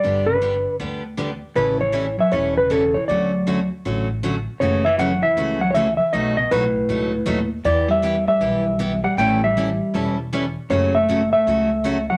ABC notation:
X:1
M:4/4
L:1/16
Q:"Swing" 1/4=157
K:F#phr
V:1 name="Electric slide guitar"
d2 B6 z8 | B2 c4 e2 c2 B2 A2 c2 | d6 z8 z2 | c2 e2 f2 e4 f3/2 c/2 e2 e2 |
^d2 d2 B8- B2 z2 | d2 e4 e8 f2 | g2 e8 z6 | c2 e4 e8 f2 |]
V:2 name="Steel-string acoustic guitar"
[D,G,B,DG]2 z2 [D,G,B,DG] z3 [D,G,B,DG]2 z2 [D,G,B,DG] z3 | [E,G,CEA]2 z2 [E,G,CEA] z3 [E,G,CEA]2 z2 [E,G,CEA] z3 | [D,F,A,CF]2 z2 [D,F,A,CF] z3 [D,F,A,CF]2 z2 [D,F,A,CF] z3 | [C,E,A,CF]2 z2 [C,E,A,CF] z3 [C,E,A,CF]2 z2 [C,E,A,CF] z3 |
[B,,F,A,^DF]2 z2 [B,,F,A,DF] z3 [B,,F,A,DF]2 z2 [B,,F,A,DF] z3 | [E,B,EG]2 z2 [E,B,EG] z3 [E,B,EG]2 z2 [E,B,EG] z3 | [E,G,CEA]2 z2 [E,G,CEA] z3 [E,G,CEA]2 z2 [E,G,CEA] z3 | [C,F,A,CF]2 z2 [C,F,A,CF] z3 [C,F,A,CF]2 z2 [C,F,A,CF] z3 |]
V:3 name="Hollow-body jazz guitar" clef=bass
G,2 D,6 z8 | C,2 E,4 F,2 E,2 C,2 C,2 E,2 | F,6 z8 z2 | C,2 E,2 F,2 E,4 F,3/2 E,/2 E,2 E,2 |
B,,2 B,,2 A,,8- A,,2 z2 | E,2 G,4 G,8 G,2 | A,2 G,8 z6 | C,2 A,4 A,8 F,2 |]
V:4 name="Upright bass" clef=bass
G,,,8 D,,8 | A,,,8 E,,,8 | D,,8 A,,,8 | F,,,8 C,,8 |
B,,,4 B,,,4 C,,4 ^D,,4 | E,,8 B,,,8 | A,,,8 E,,,8 | F,,,8 C,,8 |]